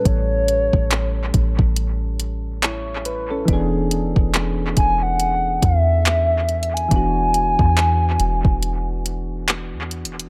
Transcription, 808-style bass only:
X:1
M:4/4
L:1/16
Q:"Swing 16ths" 1/4=70
K:Edor
V:1 name="808-style bass" clef=bass
A,,,3 A,,,3 A,,, A,,,8- A,,, | E,,,3 E,,,3 E,,,4 E,,6 | E,,,3 E,,3 E,,, E,,,6 E,,3/2 E,,,3/2 |]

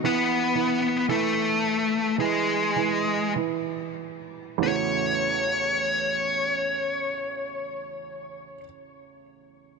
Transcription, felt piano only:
X:1
M:4/4
L:1/8
Q:1/4=46
K:A
V:1 name="Felt piano" clef=bass
E, E, E,2 E, E, E,2 | [A,,,E,,C,A,EF]8 |]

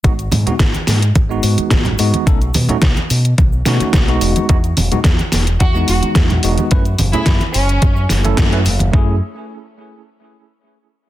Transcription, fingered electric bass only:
X:1
M:4/4
L:1/8
Q:1/4=108
K:F#dor
V:1 name="Fingered electric bass" clef=bass
G,,, G,, G,,, G,, G,,, G,, G,,, G,, | B,,, B,, B,,, B,, B,,, B,, B,,, E,,, | E,, E,,, E,, E,,, E,, E,,, E,, E,,, | F,, F,,, F,, F,,, F,, F,,, F,, F,,, |
F,, z6 z |]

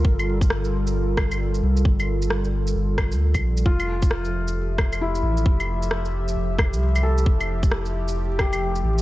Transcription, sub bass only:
X:1
M:4/4
L:1/16
Q:"Swing 16ths" 1/4=133
K:F
V:1 name="Sub bass" clef=bass
G,,,12- G,,,2 C,,2 | G,,,8 G,,,3 D,,2 C,, B,,,2 | F,,,12- F,,,2 A,,,2 | F,,,8 F,,,3 C,,4- C,, |
F,,,12- F,,,2 A,,,2 |]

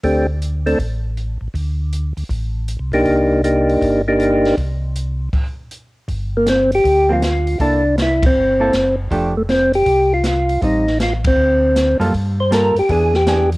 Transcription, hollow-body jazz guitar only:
X:1
M:4/4
L:1/8
Q:"Swing" 1/4=159
K:Dphr
V:1 name="Hollow-body jazz guitar"
z8 | z8 | z8 | z8 |
z4 z [F,B,C] z2 | [B,=EA] z4 [B,EA] z2 | [F,A,DG] z6 z | [G,CE] z6 [G,B,FA] |
z2 [G,B,FA] z [=E,=B,D^G] z [E,B,DG] z |]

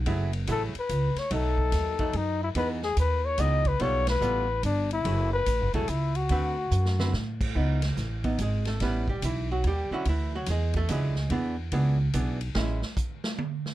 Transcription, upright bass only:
X:1
M:3/4
L:1/8
Q:"Swing" 1/4=144
K:C#m
V:1 name="Upright bass" clef=bass
F,,,2 A,,, z C,, z | B,,,2 D,,2 F,,2 | E,,2 D,,2 C,,2 | B,,,2 A,,,2 =G,,,2 |
F,,,2 (3A,,, F,,, E,,, C,,2 | =D,,2 F,,2 A,,2 | C,,2 A,,,2 G,,,2 | A,,,2 B,,,2 D,, z |
=D,,2 E,,2 C,,2 | E,,2 C,,2 B,,,2 | A,,, z4 z |]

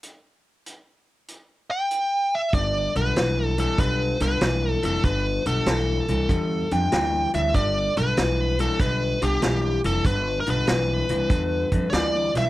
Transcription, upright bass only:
X:1
M:4/4
L:1/8
Q:"Swing" 1/4=96
K:Gmix
V:1 name="Upright bass" clef=bass
z8 | G,,, B,,, B,,,2 B,,, C,, B,,, F,,, | G,,, B,,, B,,, C,, E,, F,, D,, D,, | G,,, B,,, B,,,2 B,,, C,, B,,, F,,, |
G,,, B,,, B,,, C,, E,, F,, D,, B,,, |]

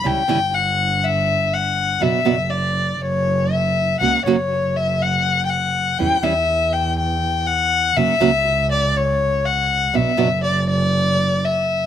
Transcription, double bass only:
X:1
M:4/4
L:1/8
Q:1/4=121
K:F#phr
V:1 name="Double bass" clef=bass
C,, G,,,6- G,,, | F,,, F,,,3 F,,,4 | C,, F,,,6- F,,, | E,, E,,6- E,, |
F,,, C,,6- C,, | B,,, F,,,6- F,,, |]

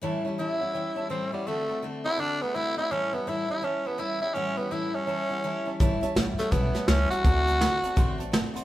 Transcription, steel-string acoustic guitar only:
X:1
M:4/4
L:1/8
Q:"Swing" 1/4=166
K:Amix
V:1 name="Steel-string acoustic guitar"
[A,,E,G,CE] [G,CE] [A,,E,G,CE] [G,CE] [E,G,CE] [G,CE] [A,,E,G,CE] [G,CE] | [D,A,=CF] [A,CF] [D,A,CF] [A,CF] [D,A,CF] [A,CF] [D,A,CF] [A,CF] | [A,,E,G,CE] [G,CE] [A,,E,G,CE] [G,CE] [E,G,CE] [G,CE] [A,,E,G,CE] [G,CE] | [A,,E,G,CE] [G,CE] [A,,E,G,CE] [G,CE] [E,G,CE] [G,CE] [A,,E,G,CE] [G,CE] |
[A,,E,G,CE] [G,CE] [E,G,CE] [G,CE] [A,,E,G,CE] [G,CE] [E,G,CE] [G,CE] | [D,A,=CF] [A,CF] [D,A,CF] [A,CF] [D,A,CF] [A,CF] [D,A,CF] [A,CF] |]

